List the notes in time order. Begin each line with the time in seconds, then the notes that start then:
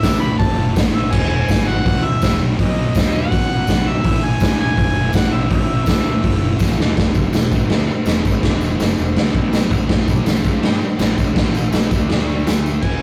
Already playing: E5
0.02 C#2 A2 E3 A3, kick, snare, open hi-hat, tambourine
0.20 A2 E3 A3 B5
0.39 F#1 A2 E3 A3 A5, kick, open hi-hat
0.58 A2 E3 A3
0.75 A1 A2 E3 A3, kick, snare, open hi-hat, tambourine
0.93 A1 A2 E3 A3 E5
1.12 E1 E2 B2 E3 G#5, kick, crash
1.29 E2 B2 E3 G#5
1.49 G#1 E2 B2 E3, kick, snare, open hi-hat, tambourine
1.67 E2 B2 E3 F#5
1.85 C#2 E2 B2 E3, kick, open hi-hat
2.05 E2 B2 E3 E5
2.22 E1 E2 B2 E3, kick, snare, open hi-hat, tambourine
2.39 B1 B2 F#3 B3
2.59 B1 B2 F#3 B3 D#5, kick, open hi-hat
2.77 B2 F#3 B3
2.95 D#2 B2 F#3 B3, kick, snare, open hi-hat, tambourine
3.14 B2 F#3 B3 F#5
3.32 A1 B2 F#3 B3, kick, open hi-hat
3.51 B2 F#3 B3
3.67 B1 B2 F#3 B3, kick, snare, open hi-hat, tambourine
3.84 B1 B2 F#3
3.89 B3 E5
4.04 A1 A2 E3 A3, kick, open hi-hat
4.23 A2 E3 A3 G#5
4.40 C#2 A2 E3 A3, kick, snare, open hi-hat, tambourine
4.59 A2 E3 A3 G#5
4.76 F#1 A2 E3 A3, kick, open hi-hat
4.95 A2 E3 A3
5.13 A1 A2 E3 A3 F#5, kick, snare, open hi-hat, tambourine
5.31 A1 A2 E3 A3 E5
5.51 A1 A2 E3 A3 E5, kick, open hi-hat
5.67 A2 E3 A3
5.86 C#2 A2 E3 A3, kick, snare, open hi-hat, tambourine
6.04 A2 E3 A3
6.23 F#1 A2 E3 A3, kick, open hi-hat
6.42 A2 E3 A3
6.59 A1 A2 E3 A3, kick, snare, tambourine
6.78 D#2 A2 E3 A3, snare
6.96 E1 E2 B2 E3, kick, snare, tambourine, crash
7.14 F#1 F#2 C#3 F#3, kick, tambourine
7.23 tambourine
7.32 E1 E2 B2, snare, tambourine, crash
7.43 tambourine
7.51 G#1 G#2 D#3 G#3, kick, tambourine
7.61 tambourine
7.69 D2 D3 A3 D4, snare, crash
7.79 tambourine
7.87 muted fingered electric bass stroke, muted distorted electric guitar stroke, tambourine
8.05 E1 E2 B2 E3, snare, tambourine, crash
8.15 tambourine
8.24 G#1 G#2 D#3 G#3, kick, tambourine
8.34 tambourine
8.42 E1 E2 B2 E3, kick, snare, crash
8.61 tambourine
8.71 tambourine
8.79 F#1 F#2 C#3 F#3, snare, tambourine, crash
8.89 tambourine
8.98 E1 E2 B2, tambourine
9.08 tambourine
9.16 C#2 C#3 G#3 C#4, snare, crash
9.26 tambourine
9.35 B1 B2 F#3 B3, kick, tambourine
9.53 snare, tambourine, crash
9.63 tambourine
9.70 A1 A2 E3 A3, kick, tambourine
9.81 tambourine
9.89 A1 A2 E3 A3, kick, snare, tambourine, crash
10.07 B1 B2 F#3 B3, kick, tambourine
10.16 tambourine
10.25 A1 A2 E3, snare, tambourine, crash
10.36 tambourine
10.44 C#2 C#3 G#3 C#4, kick, tambourine
10.54 tambourine
10.61 G2 G3 D4 G4, snare, crash
10.73 tambourine
10.80 muted fingered electric bass stroke, muted distorted electric guitar stroke, tambourine
10.98 A1 A2 E3 A3, snare, tambourine, crash
11.08 tambourine
11.17 C#2 C#3 G#3 C#4, kick, tambourine
11.28 tambourine
11.36 A1 A2 E3 A3, kick, snare, tambourine, crash
11.47 tambourine
11.55 tambourine
11.64 tambourine
11.72 B1 B2 F#3 B3, snare, tambourine, crash
11.82 tambourine
11.91 D2 D3 A3 D4, kick, tambourine
12.01 tambourine
12.09 snare, tambourine, crash
12.20 tambourine
12.29 tambourine
12.39 tambourine
12.47 snare, tambourine, crash
12.57 tambourine
12.66 tambourine
12.76 tambourine
12.81 E1 E2 B2 E3 G#5, kick, crash